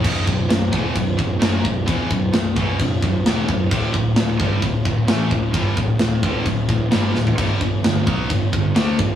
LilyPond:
<<
  \new Staff \with { instrumentName = "Distorted electric guitar" } { \clef bass \time 4/4 \key b \minor \tempo 4 = 131 <b,, fis, b,>8 <b,, fis,>8 <b,, fis,>8 <e, b, e>8 <b,, fis,>8 <b,, fis,>8 <fis, cis fis>8 <b,, fis,>8 | <e, b, e>8 <b,, fis,>8 <b,, fis,>8 <b,, fis, b,>8 <b,, fis,>8 <b,, fis,>8 <e, b, e>8 <b,, fis,>8 | <d, a, d>8 <d, a,>8 <d, a,>8 <g, d g>8 <d, a,>8 <d, a,>8 <a, e a>8 <d, a,>8 | <g, d g>8 <d, a,>8 <d, a,>8 <d, a, d>8 <d, a,>8 <d, a,>8 <g, d g>8 <d, a,>8 |
<g, d g>8 <g, d>8 <g, d>8 <b, fis b>8 <g, d>8 <g, d>8 <d a d'>8 <g, d>8 | }
  \new Staff \with { instrumentName = "Picked electric bass" } { \clef bass \time 4/4 \key b \minor b,,,8 b,,,8 b,,,8 e,,8 b,,,8 b,,,8 fis,,8 b,,,8 | e,,8 b,,,8 b,,,8 b,,,8 b,,,8 b,,,8 e,,8 b,,,8 | d,,8 d,,8 d,,8 g,,8 d,,8 d,,8 a,,8 d,,8 | g,,8 d,,8 d,,8 d,,8 d,,8 d,,8 g,,8 d,,8 |
g,,8 g,,8 g,,8 b,,8 g,,8 g,,8 d,8 g,,8 | }
  \new DrumStaff \with { instrumentName = "Drums" } \drummode { \time 4/4 <cymc bd>8 bd8 <cymc sn>8 bd8 <cymc bd>8 bd8 <cymc sn>8 bd8 | <cymc bd>8 bd8 <cymc sn>8 bd8 <cymc bd>8 bd8 <cymc sn>8 bd8 | <cymc bd>8 bd8 <cymc sn>8 bd8 <cymc bd>8 bd8 <cymc sn>8 bd8 | <cymc bd>8 bd8 <cymc sn>8 bd8 <cymc bd>8 bd8 <cymc sn>8 sn16 tomfh16 |
<cymc bd>8 bd8 <cymc sn>8 bd8 <cymc bd>8 bd8 <cymc sn>8 bd8 | }
>>